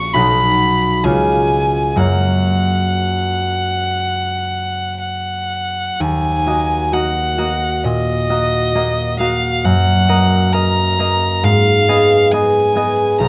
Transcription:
0.00 0.17 A#1 soft
0.00 0.17 C#4 soft
0.00 0.14 F#4 soft
0.00 0.14 F#5 soft
0.00 0.16 C#6 medium
0.14 1.07 B1 soft
0.14 1.07 D#4 soft
0.14 1.08 F#4 soft
0.14 1.08 F#5 soft
0.14 1.06 B5 medium
1.04 2.04 C#2 soft
1.04 4.95 C#4 soft
1.04 2.04 F4 soft
1.04 1.98 C#5 soft
1.04 2.00 G#5 medium
1.96 5.86 F#2 soft
1.96 5.87 A#3 soft
1.96 5.88 F#4 soft
1.96 5.90 C#5 soft
2.01 4.99 F#5 medium
5.02 6.02 F#5 soft
6.00 9.67 D#2 soft
6.00 6.95 G#5 medium
6.46 6.91 A#3 soft
6.46 6.91 F#4 soft
6.46 6.92 D#5 soft
6.92 7.36 A#3 soft
6.92 7.37 F#4 soft
6.92 7.37 D#5 soft
6.92 7.85 F#5 medium
7.38 8.28 A#3 soft
7.38 8.28 F#4 soft
7.38 8.29 D#5 soft
7.84 9.67 A#2 soft
7.84 9.19 D#5 medium
8.29 8.74 A#3 soft
8.29 8.74 F#4 soft
8.29 8.74 D#5 soft
8.75 9.18 A#3 soft
8.75 9.19 F#4 soft
8.75 9.19 D#5 soft
9.19 10.07 A#3 soft
9.19 11.47 F#4 soft
9.19 10.08 D#5 soft
9.19 9.66 F5 medium
9.64 11.48 F#2 soft
9.64 10.54 F#5 medium
10.08 10.52 A#3 soft
10.08 10.52 A#4 soft
10.08 10.53 D#5 soft
10.53 10.97 A#3 soft
10.53 10.98 A#4 soft
10.53 10.99 D#5 soft
10.53 11.45 A#5 medium
10.98 11.47 A#3 soft
10.98 11.48 A#4 soft
10.98 11.87 D#5 soft
11.43 13.24 G#2 soft
11.43 12.34 F5 medium
11.88 12.31 B3 soft
11.88 12.32 G#4 soft
11.88 12.33 D#5 soft
12.32 12.74 B3 soft
12.32 12.75 G#4 soft
12.32 12.75 D#5 soft
12.32 13.20 G#5 medium
12.75 13.28 B3 soft
12.75 13.28 G#4 soft
12.75 13.28 D#5 soft
13.20 13.28 B1 soft
13.20 13.28 A#5 medium

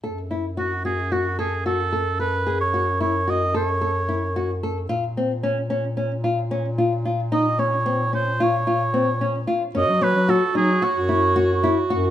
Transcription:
0.04 4.86 F#2 soft
0.04 0.17 A4 soft
0.31 0.44 E4 soft
0.57 0.71 F#4 medium
0.57 0.84 F#4 soft
0.85 0.98 F#4 soft
0.85 1.13 G#4 medium
1.12 1.25 F#4 soft
1.12 1.39 F#4 medium
1.39 1.64 G#4 soft
1.39 1.52 A4 medium
1.66 1.79 F#4 medium
1.66 2.17 A4 medium
1.92 2.06 A4 soft
2.20 2.33 A4 soft
2.20 2.58 B4 medium
2.47 2.60 G#4 medium
2.61 2.98 C#5 medium
2.74 2.87 F#4 soft
3.00 3.14 E4 medium
3.00 3.32 C#5 medium
3.27 3.41 F#4 medium
3.27 3.56 D#5 medium
3.54 3.68 A4 medium
3.54 4.60 C#5 medium
3.81 3.95 A4 medium
4.09 4.22 E4 medium
4.36 4.50 F#4 medium
4.63 4.77 A4 soft
4.89 9.58 A#2 medium
4.89 5.03 F4 medium
5.17 5.31 C4 medium
5.43 5.57 C#4 medium
5.70 5.84 C#4 medium
5.97 6.11 C#4 medium
6.24 6.38 F4 medium
6.51 6.65 C#4 medium
6.78 6.92 F4 soft
7.05 7.19 F4 medium
7.32 7.46 D#4 medium
7.32 7.61 D#5 medium
7.59 7.72 C#4 medium
7.59 8.14 C#5 medium
7.86 7.99 C4 medium
8.13 8.27 C#4 soft
8.13 8.44 C5 medium
8.40 8.54 F4 medium
8.40 9.49 C#5 medium
8.67 8.81 F4 medium
8.94 9.07 C4 medium
9.21 9.35 C#4 medium
9.47 9.61 F4 medium
9.75 9.90 F#2 medium
9.75 9.88 C#4 medium
9.75 12.10 F#4 medium
9.75 10.05 D#5 medium
9.89 10.01 F#3 medium
10.01 10.14 F#3 medium
10.01 10.15 C#4 medium
10.01 10.32 B4 medium
10.15 10.40 F#3 medium
10.29 10.42 F#4 medium
10.29 10.56 A4 medium
10.55 10.80 F#3 medium
10.55 10.69 D#4 medium
10.55 10.86 G#4 medium
10.82 10.96 F#4 medium
10.82 11.91 C#5 medium
10.96 11.80 F#2 medium
11.09 11.23 E4 medium
11.36 11.50 F#4 medium
11.63 11.77 E4 medium
11.90 12.10 F#2 medium
11.90 12.04 F#4 medium

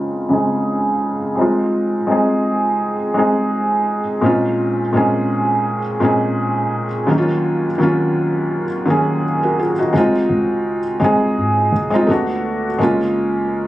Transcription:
0.00 0.29 C#3 medium
0.00 0.30 G#3 medium
0.00 0.31 C4 medium
0.00 0.32 D#4 medium
0.00 1.39 F4 medium
0.29 1.14 C#3 medium
0.29 1.15 G#3 medium
0.29 1.15 C4 medium
0.29 1.16 D#4 medium
0.33 1.16 G#4 medium
1.36 1.43 G3 medium
1.36 1.94 C4 medium
1.36 1.95 D#4 medium
1.40 1.97 G#3 medium
1.40 1.96 F4 medium
2.07 2.92 G#3 medium
2.07 2.93 C4 medium
2.07 2.94 D#4 medium
2.12 2.95 G#4 medium
3.14 4.00 G#3 medium
3.14 4.00 C4 medium
3.14 4.01 D#4 medium
3.19 4.02 G#4 medium
4.21 4.79 A#2 medium
4.21 4.80 G#3 medium
4.21 4.80 C4 medium
4.21 4.80 C#4 medium
4.21 4.81 D#4 medium
4.26 4.81 F4 medium
4.93 5.78 A#2 medium
4.93 5.79 G#3 medium
4.93 5.79 C4 medium
4.93 5.79 C#4 medium
4.93 5.80 D#4 medium
4.97 5.80 G#4 medium
6.00 6.85 A#2 medium
6.00 6.86 G#3 medium
6.00 6.86 C4 medium
6.00 6.87 C#4 medium
6.00 6.87 D#4 medium
6.04 6.88 G#4 medium
7.07 7.65 D#2 medium
7.07 7.65 F#3 medium
7.07 7.66 A#3 medium
7.07 7.66 C#4 medium
7.11 7.17 D#4 medium
7.18 7.70 F4 medium
7.78 8.64 D#2 medium
7.78 8.64 F#3 medium
7.78 8.65 A#3 medium
7.78 8.66 C#4 medium
7.83 8.66 F4 medium
8.86 9.71 D#2 medium
8.86 9.72 F#3 medium
8.86 9.72 A#3 medium
8.86 9.73 C#4 medium
8.90 9.24 G#4 medium
9.43 9.58 F#4 medium
9.43 9.58 A#4 medium
9.59 9.77 F4 medium
9.59 9.77 G#4 medium
9.79 9.94 D#4 medium
9.79 10.12 F#4 medium
9.93 10.28 C#2 loud
9.93 10.78 G#3 medium
9.93 10.79 C4 medium
9.93 10.80 D#4 medium
9.97 10.80 F4 medium
10.29 10.98 C#2 loud
11.00 11.38 C#2 loud
11.00 11.70 G#3 medium
11.00 11.71 C4 medium
11.00 11.72 D#4 medium
11.04 11.73 G#4 medium
11.37 11.71 G#2 medium
11.72 12.07 C#2 loud
11.90 12.08 G#3 medium
11.90 12.08 C4 medium
11.90 12.09 D#4 medium
11.95 12.10 F4 medium
12.07 12.77 D2 medium
12.07 12.66 A3 medium
12.07 12.67 B3 medium
12.07 12.67 D4 medium
12.11 12.68 F#4 medium
12.78 13.67 F#1 loud
12.78 13.64 G#3 medium
12.78 13.65 A#3 medium
12.78 13.65 C#4 medium
12.83 13.66 F4 medium

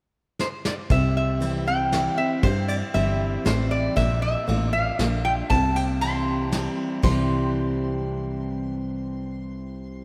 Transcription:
0.39 0.47 C5 medium
0.39 snare medium
0.65 0.73 D5 medium
0.65 snare medium
0.90 2.09 C2 medium
0.90 1.88 C3 medium
0.90 1.15 E5 medium
0.90 kick loud
0.90 ride medium
1.17 1.67 E5 medium
1.40 1.65 E3 medium
1.40 1.66 G3 medium
1.40 1.66 C4 medium
1.40 1.65 E4 medium
1.40 ride medium
1.67 1.92 C4 soft
1.67 1.91 E4 medium
1.67 2.15 G5 medium
1.92 2.17 E3 soft
1.92 2.17 G3 medium
1.92 2.17 C4 medium
1.92 2.16 E4 medium
1.92 snare medium
1.92 ride medium
2.17 2.43 C4 soft
2.17 2.42 E4 soft
2.17 2.44 E5 medium
2.43 2.83 G2 medium
2.43 3.41 G2 medium
2.43 2.67 C5 medium
2.43 kick loud
2.43 ride medium
2.68 2.75 D5 medium
2.68 ride medium
2.94 3.38 G1 medium
2.94 3.43 E3 medium
2.94 3.43 G3 medium
2.94 3.43 C4 medium
2.94 3.44 E4 medium
2.94 3.47 E5 medium
2.94 ride medium
3.45 3.89 A1 medium
3.45 3.94 E3 medium
3.45 3.94 G3 medium
3.45 3.94 C4 medium
3.45 3.95 E4 medium
3.45 3.72 C5 medium
3.45 snare medium
3.45 ride medium
3.71 3.96 D5 medium
3.96 4.36 A#1 medium
3.96 4.93 A#2 medium
3.96 4.21 E5 medium
3.96 kick loud
3.96 ride medium
4.22 4.72 E5 medium
4.47 4.91 A1 medium
4.47 4.72 D3 soft
4.47 4.72 A#3 medium
4.47 4.73 D4 medium
4.47 4.72 F4 medium
4.47 ride medium
4.73 4.98 D4 soft
4.73 4.98 F4 medium
4.73 5.24 F5 medium
4.99 5.43 A#1 medium
4.99 5.23 D3 medium
4.99 5.24 A#3 medium
4.99 5.24 D4 medium
4.99 5.23 F4 medium
4.99 snare medium
4.99 ride medium
5.25 5.50 D4 soft
5.25 5.49 F4 medium
5.25 5.32 G5 medium
5.50 6.69 C2 medium
5.50 6.47 C3 medium
5.50 5.74 A5 medium
5.50 kick loud
5.50 ride medium
5.76 5.83 G5 medium
5.76 ride medium
6.01 6.50 E3 soft
6.01 6.50 G3 medium
6.01 6.50 C4 medium
6.01 6.51 E4 medium
6.01 6.74 C6 medium
6.01 ride medium
6.52 7.00 E3 medium
6.52 7.01 G3 medium
6.52 7.01 C4 medium
6.52 7.01 E4 medium
6.52 snare medium
6.52 ride medium
7.03 10.04 C2 medium
7.03 10.04 C3 medium
7.03 10.04 E3 medium
7.03 10.04 G3 medium
7.03 10.04 C4 medium
7.03 10.04 E4 medium
7.03 10.04 C6 medium
7.03 kick loud
7.03 crash medium

